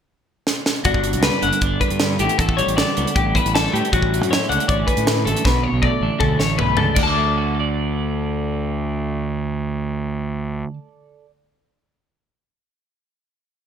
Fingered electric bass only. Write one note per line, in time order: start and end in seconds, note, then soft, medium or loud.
0.85 1.15 G1 loud
1.14 1.29 C#2 medium
1.42 1.50 F#1 medium
1.61 1.76 G1 medium
1.90 2.21 G2 medium
2.19 2.27 A1 medium
2.39 2.61 A1 medium
2.67 2.82 A1 medium
2.98 3.04 C#2 medium
3.16 3.38 A1 medium
3.44 3.66 A1 medium
3.74 3.80 A2 medium
3.92 4.21 A1 loud
4.21 4.36 F#2 medium
4.50 4.57 C#2 medium
4.69 4.83 A1 medium
4.97 5.27 A2 medium
5.26 5.33 A1 medium
5.45 5.67 B1 medium
5.72 5.87 B1 medium
6.01 6.09 A1 medium
6.21 6.36 D2 medium
6.41 6.57 A1 medium
6.61 6.77 B1 medium
6.78 6.95 C#2 medium
6.96 10.63 D2 medium